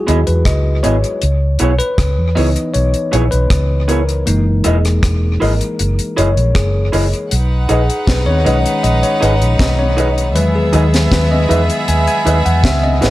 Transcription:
Already playing: tine electric piano F#3 G#3 D#4 E4 F#4 G#4
0.07 fingered electric bass D#2, clean electric guitar B3 E4 G#4 D#5, closed hi-hat
0.27 fingered electric bass E2, tine electric piano B4, closed hi-hat
0.45 fingered electric bass C#2, tine electric piano D#5, kick, cross-stick, closed hi-hat
0.83 fingered electric bass G#1, clean electric guitar B3 E4 G#4 D#5, tine electric piano C#5, closed hi-hat
1.04 closed hi-hat
1.22 fingered electric bass C#2, closed hi-hat
1.59 fingered electric bass B1, clean electric guitar B3 E4 G#4 C#5, closed hi-hat
1.79 tine electric piano B4, closed hi-hat
1.98 fingered electric bass C#2, kick, cross-stick, closed hi-hat
2.18 fingered electric bass E2
2.35 fingered electric bass C#2, tine electric piano E3 B3 D#4 D#5, clean electric guitar B3 E4 G#4 C#5, open hi-hat
2.56 closed hi-hat
2.74 fingered electric bass B1, tine electric piano C#5, closed hi-hat
2.94 closed hi-hat
3.12 fingered electric bass A#1, clean electric guitar B3 E4 G#4 C#5, closed hi-hat
3.31 fingered electric bass B1, tine electric piano B4, closed hi-hat
3.50 fingered electric bass C#2, kick, cross-stick, closed hi-hat
3.88 clean electric guitar B3 E4 G#4 C#5, tine electric piano A#4, closed hi-hat
4.09 closed hi-hat
4.26 fingered electric bass F#1, tine electric piano E3 G#3 A#3 D#4, closed hi-hat
4.64 fingered electric bass E1, clean electric guitar E4 G#4 A#4 D#5, tine electric piano G#4, closed hi-hat
4.85 cross-stick, closed hi-hat
5.03 fingered electric bass E1, kick, cross-stick, closed hi-hat
5.40 fingered electric bass G#1, clean electric guitar E4 G#4 A#4 D#5, tine electric piano A#4, open hi-hat
5.61 closed hi-hat
5.79 fingered electric bass F#1, closed hi-hat
5.99 closed hi-hat
6.17 fingered electric bass F#1, clean electric guitar E4 G#4 A#4 D#5, tine electric piano C#5, closed hi-hat
6.37 fingered electric bass A#1, closed hi-hat
6.55 fingered electric bass F#1, tine electric piano G#4, kick, cross-stick, closed hi-hat
6.92 fingered electric bass F#1, clean electric guitar E4 G#4 A#4 D#5, open hi-hat
7.13 closed hi-hat
7.31 fingered electric bass B1, violin section D#4 B4 F#5, closed hi-hat
7.69 fingered electric bass A#1, clean electric guitar D#4 G#4 B4 D#5, tine electric piano G#4, closed hi-hat
7.90 closed hi-hat
8.07 fingered electric bass B1, tine electric piano B4, kick, snare, closed hi-hat
8.26 fingered electric bass D#2, tine electric piano C#5
8.45 fingered electric bass B1, tine electric piano D#3 G#3 C#4, clean electric guitar D#4 G#4 B4 D#5, closed hi-hat
8.66 closed hi-hat
8.83 fingered electric bass A#1, tine electric piano D#5, closed hi-hat
9.03 tine electric piano C#5, closed hi-hat
9.21 fingered electric bass G#1, clean electric guitar D#4 G#4 B4 D#5, closed hi-hat
9.42 fingered electric bass A#1, closed hi-hat
9.59 fingered electric bass B1, tine electric piano D#5, kick, snare, closed hi-hat
9.79 tine electric piano C#5
9.97 clean electric guitar D#4 G#4 B4 D#5, closed hi-hat
10.18 closed hi-hat
10.35 fingered electric bass E2, tine electric piano D#3 F#3 G#3 B4, violin section B3 G#4 E5, closed hi-hat
10.55 tine electric piano G#4
10.73 fingered electric bass D#2, clean electric guitar D#4 G#4 B4 D#5, closed hi-hat
10.94 snare, closed hi-hat
11.12 fingered electric bass D#2, tine electric piano B4, kick, snare, closed hi-hat
11.31 tine electric piano D#5
11.49 fingered electric bass E2, clean electric guitar D#4 G#4 B4 D#5, tine electric piano E5, closed hi-hat
11.70 closed hi-hat
11.88 fingered electric bass D#2, tine electric piano G#5, closed hi-hat
12.07 tine electric piano G#5, closed hi-hat
12.25 fingered electric bass D#2, clean electric guitar D#4 G#4 B4 D#5, closed hi-hat
12.45 fingered electric bass E2, tine electric piano F#5, closed hi-hat
12.64 fingered electric bass C#2, tine electric piano E5, kick, snare, closed hi-hat
12.83 tine electric piano D#5
13.01 fingered electric bass G#1, clean electric guitar D#4 G#4 B4 D#5, snare, closed hi-hat

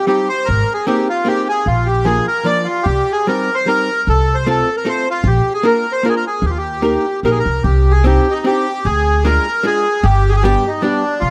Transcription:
0.07 hollow-body jazz guitar G3 C4 D#4 G4, bandoneon G4
0.29 bandoneon C5
0.45 upright bass G#1, bandoneon A#4
0.74 bandoneon G#4
0.87 hollow-body jazz guitar A#3 C4 D#4 G#4, bandoneon G4
1.09 bandoneon F4
1.25 hollow-body jazz guitar A#3 C4 D#4 G#4, bandoneon G4
1.49 bandoneon G#4
1.66 upright bass A#1, bandoneon F4
1.86 bandoneon G4
2.05 hollow-body jazz guitar F3 A#3 D4 F4, bandoneon G#4
2.28 bandoneon A#4
2.44 hollow-body jazz guitar F3 A#3 D4 F4, bandoneon D5
2.65 bandoneon F4
2.83 upright bass C2, bandoneon G4
3.12 bandoneon G#4
3.27 hollow-body jazz guitar G3 C4 D#4 G4, bandoneon A#4
3.55 bandoneon C5
3.66 hollow-body jazz guitar G3 C4 D#4 G4, bandoneon A#4
4.07 upright bass C2, bandoneon A4
4.34 bandoneon C5
4.47 hollow-body jazz guitar A3 C4 F4 A4, bandoneon A4
4.77 bandoneon A#4
4.85 hollow-body jazz guitar A3 C4 F4 A4, bandoneon C5
5.10 bandoneon F4
5.24 upright bass A#1, bandoneon G4
5.54 bandoneon G#4
5.63 hollow-body jazz guitar A#3 D4 F4 A#4, bandoneon A#4
5.92 bandoneon C5
6.03 hollow-body jazz guitar A#3 D4 F4 A#4, bandoneon A#4
6.09 bandoneon G#4
6.16 bandoneon A#4
6.27 bandoneon G#4
6.42 upright bass D#2, bandoneon G4
6.50 bandoneon F4
6.57 bandoneon G4
6.82 hollow-body jazz guitar A#3 D#4 G4 A#4
7.23 upright bass A#1, hollow-body jazz guitar A#3 D#4 G4 A#4, bandoneon A#4
7.31 bandoneon G#4
7.39 bandoneon A#4
7.45 upright bass C2
7.64 upright bass C2, bandoneon G4
7.91 bandoneon G#4
8.04 hollow-body jazz guitar C4 D4 D#4 G4, bandoneon G4
8.31 bandoneon D#4
8.44 hollow-body jazz guitar C4 D4 D#4 G4, bandoneon G4
8.85 upright bass D2, bandoneon G#4
9.25 hollow-body jazz guitar G#3 D4 F4 G#4, bandoneon A#4
9.63 hollow-body jazz guitar G#3 D4 F4 G#4, bandoneon G#4
10.03 upright bass G1, bandoneon G4
10.29 bandoneon G4 G#4
10.36 bandoneon G#4
10.42 hollow-body jazz guitar G3 B3 D4 G4, bandoneon G4
10.68 bandoneon D#4
10.82 hollow-body jazz guitar G3 B3 D4 G4, bandoneon D4
11.20 upright bass C2, bandoneon F4

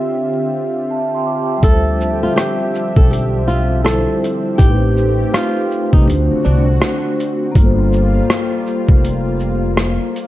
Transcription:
Already playing: analog synth pad D3 C4 F4 G4 E5, vibraphone C4 F4 G4 E5
0.90 vibraphone E5 A5
1.14 vibraphone G5 C6
1.26 vibraphone A5 D6
1.51 vibraphone E5 A5
1.57 vibraphone G3
1.62 upright bass D2, analog synth pad D3 F3 C4 G4 E5, nylon-string guitar A4, vibraphone E5, kick, closed hi-hat
1.66 vibraphone F4
1.71 vibraphone C5
2.01 shaker
2.23 nylon-string guitar F4
2.36 nylon-string guitar G4, cross-stick, closed hi-hat
2.75 shaker
2.96 upright bass B1, nylon-string guitar A4, kick
3.11 nylon-string guitar G4, closed hi-hat
3.48 nylon-string guitar F4, shaker
3.84 vibraphone G3 E4, nylon-string guitar A4, cross-stick, closed hi-hat
3.89 vibraphone F4 C5
4.24 closed hi-hat, shaker
4.56 upright bass A1, vibraphone A3, nylon-string guitar G4, kick
4.60 analog synth pad A3 G4, vibraphone D#4, closed hi-hat
4.65 vibraphone G4
4.69 vibraphone B4
4.75 vibraphone C5
4.97 shaker
5.34 nylon-string guitar F4, cross-stick, closed hi-hat
5.71 shaker
5.93 upright bass C2, nylon-string guitar D#4, kick
6.01 vibraphone A3
6.06 upright bass D2, analog synth pad D3 F#4, vibraphone D4, closed hi-hat
6.10 vibraphone F4
6.14 vibraphone F#4 C5
6.31 muted upright bass stroke
6.45 upright bass C2, nylon-string guitar D4, shaker
6.82 cross-stick, closed hi-hat
7.20 closed hi-hat, shaker
7.52 upright bass G1, analog synth pad G3 A#3 F4, vibraphone A#3, kick
7.56 vibraphone F4, closed hi-hat
7.60 vibraphone A4
7.65 vibraphone C5
7.93 shaker
8.30 cross-stick, closed hi-hat
8.67 shaker
8.89 upright bass F1, kick
9.05 closed hi-hat
9.40 shaker
9.77 cross-stick, closed hi-hat
10.16 closed hi-hat, shaker

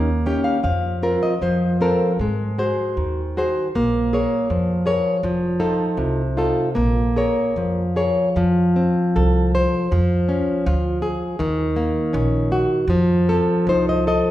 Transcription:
Already playing: upright bass D#2, nylon-string guitar A#3
0.26 nylon-string guitar C#4 D#4 G4 G5
0.44 nylon-string guitar F5
0.63 upright bass F2, nylon-string guitar F3 F5
1.03 nylon-string guitar C4 F4 A#4
1.23 nylon-string guitar D#5
1.42 upright bass F2, nylon-string guitar F3 C5
1.81 nylon-string guitar C4 F4 A4 A#4
2.19 upright bass G#2, nylon-string guitar G#3
2.58 nylon-string guitar F#4 G#4 C5
2.97 upright bass D#2, nylon-string guitar D#3
3.37 nylon-string guitar F#4 G#4 C5
3.75 upright bass A#1, nylon-string guitar A#3
4.13 nylon-string guitar G#4 A#4 C#5
4.50 upright bass F2, nylon-string guitar F3
4.86 nylon-string guitar G#4 A#4 C#5
5.23 upright bass F1, nylon-string guitar F3
5.60 nylon-string guitar D#4 F4 A4
5.97 upright bass C2, nylon-string guitar C3
6.37 nylon-string guitar D#4 F4 A4
6.75 upright bass A#1, nylon-string guitar A#3
7.16 nylon-string guitar G#4 A#4 C#5
7.56 upright bass F2, nylon-string guitar F3
7.96 nylon-string guitar G#4 A#4 C#5
8.36 upright bass F2, nylon-string guitar F3
8.76 nylon-string guitar C4
9.16 upright bass C2, nylon-string guitar A4
9.55 nylon-string guitar C5
9.92 upright bass F2, nylon-string guitar F3
10.29 nylon-string guitar C#4
10.66 upright bass D2, nylon-string guitar F4
11.02 nylon-string guitar G#4
11.39 upright bass D#2, nylon-string guitar D#3
11.76 nylon-string guitar A#3
12.13 upright bass A#1, nylon-string guitar C#4
12.52 nylon-string guitar F#4
12.88 upright bass F2, nylon-string guitar F3
13.29 nylon-string guitar C4 A4
13.67 upright bass C2, nylon-string guitar D#4 C5
13.89 nylon-string guitar D#5
14.07 nylon-string guitar A4 D#5

